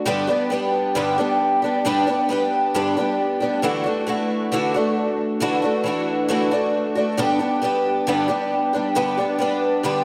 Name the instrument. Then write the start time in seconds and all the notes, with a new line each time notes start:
twelve-string acoustic guitar
0.05 G2 D3 G3 B3 D4 G4
0.27 G3 B3 D4 G4
0.50 G3 B3 D4 G4
0.95 G2 D3 G3 B3 D4 G4
1.18 G3 B3 D4 G4
1.62 G3 B3 D4 G4
1.85 G2 D3 G3 B3 D4 G4
2.07 G3 B3 D4 G4
2.29 G3 B3 D4 G4
2.74 G2 D3 G3 B3 D4 G4
2.97 G3 B3 D4 G4
3.40 G3 B3 D4 G4
3.62 D3 E3 A3 D4 F#4
3.84 A3 D4 F#4
4.07 E3 A3 D4 F#4
4.52 D3 E3 A3 D4 F#4
4.74 A3 D4 F#4
5.40 D3 E3 A3 D4 F#4
5.62 A3 D4 F#4
5.84 E3 A3 D4 F#4
6.28 D3 E3 A3 D4 F#4
6.51 A3 D4 F#4
6.95 A3 D4 F#4
7.17 G2 D3 G3 B3 D4 G4
7.39 G3 B3 D4 G4
7.62 G3 B3 D4 G4
8.07 G2 D3 G3 B3 D4 G4
8.28 G3 B3 D4 G4
8.73 G3 B3 D4 G4
8.95 G2 D3 G3 B3 D4 G4
9.18 G3 B3 D4 G4
9.38 G3 B3 D4 G4
9.83 G2 D3 G3 B3 D4 G4